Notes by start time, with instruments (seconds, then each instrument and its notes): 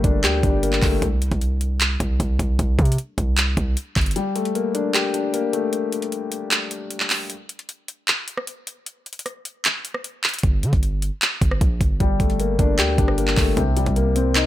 Already playing: grand piano G3 A3 A#3 D4 G4
0.04 808-style bass G1, grand piano D4, kick, closed hi-hat
0.24 808-style bass D2, grand piano G4, clap, closed hi-hat
0.43 808-style bass G1, grand piano D4, kick, closed hi-hat
0.63 grand piano A#3, closed hi-hat
0.73 clap
0.82 808-style bass G1, grand piano A3, kick, clap, open hi-hat
1.02 808-style bass C2, kick, closed hi-hat
1.22 closed hi-hat
1.32 808-style bass C2, kick, closed hi-hat
1.41 closed hi-hat
1.61 closed hi-hat
1.81 clap, closed hi-hat
2.00 808-style bass C2, kick, closed hi-hat
2.20 808-style bass C2, kick, closed hi-hat
2.39 808-style bass C2, kick, closed hi-hat
2.59 808-style bass C2, kick, closed hi-hat
2.79 808-style bass C3, kick, closed hi-hat
2.85 closed hi-hat
2.92 closed hi-hat
2.98 closed hi-hat
3.18 808-style bass C2, kick, closed hi-hat
3.38 clap, closed hi-hat
3.57 808-style bass C2, kick, closed hi-hat
3.77 closed hi-hat
3.96 808-style bass G1, kick, clap, closed hi-hat
4.01 closed hi-hat
4.06 closed hi-hat
4.11 closed hi-hat
4.16 grand piano G3, closed hi-hat
4.35 grand piano A3, closed hi-hat
4.45 closed hi-hat
4.55 grand piano A#3, closed hi-hat
4.75 grand piano D4, closed hi-hat
4.94 grand piano G4, clap, closed hi-hat
5.14 grand piano D4, closed hi-hat
5.34 grand piano A#3, closed hi-hat
5.53 grand piano A3, closed hi-hat
5.73 closed hi-hat
5.92 closed hi-hat
6.02 closed hi-hat
6.12 closed hi-hat
6.32 closed hi-hat
6.51 clap, closed hi-hat
6.71 closed hi-hat
6.91 closed hi-hat
7.00 clap
7.10 clap, open hi-hat
7.30 closed hi-hat
7.49 closed hi-hat
7.59 closed hi-hat
7.69 closed hi-hat
7.88 closed hi-hat
8.08 clap, closed hi-hat
8.28 closed hi-hat
8.37 cross-stick
8.47 closed hi-hat
8.67 closed hi-hat
8.86 closed hi-hat
9.06 closed hi-hat
9.13 closed hi-hat
9.19 closed hi-hat
9.26 cross-stick, closed hi-hat
9.45 closed hi-hat
9.65 clap, closed hi-hat
9.85 closed hi-hat
9.94 cross-stick
10.04 closed hi-hat
10.24 clap, closed hi-hat
10.29 closed hi-hat
10.34 closed hi-hat
10.39 closed hi-hat
10.43 808-style bass G1, kick, closed hi-hat
10.63 808-style bass D3, closed hi-hat
10.73 808-style bass G1, kick, closed hi-hat
10.83 closed hi-hat
11.02 closed hi-hat
11.22 clap, closed hi-hat
11.41 808-style bass G1, kick, closed hi-hat
11.51 cross-stick
11.61 808-style bass A#1, kick, closed hi-hat
11.81 808-style bass G1, kick, closed hi-hat
12.00 808-style bass G1, grand piano G3, kick, closed hi-hat
12.20 808-style bass G1, grand piano A3, kick, closed hi-hat
12.30 closed hi-hat
12.40 grand piano A#3, closed hi-hat
12.59 808-style bass G1, grand piano D4, kick, closed hi-hat
12.79 808-style bass D2, grand piano G4, clap, closed hi-hat
12.98 808-style bass G1, grand piano D4, kick, closed hi-hat
13.08 cross-stick
13.18 grand piano A#3, closed hi-hat
13.28 clap
13.37 808-style bass G1, grand piano A3, kick, clap, open hi-hat
13.57 808-style bass C2, grand piano C3, kick, closed hi-hat
13.77 grand piano G3, closed hi-hat
13.86 808-style bass C2, kick, closed hi-hat
13.96 grand piano A#3, closed hi-hat
14.16 grand piano C4, closed hi-hat
14.35 grand piano D#4, clap, closed hi-hat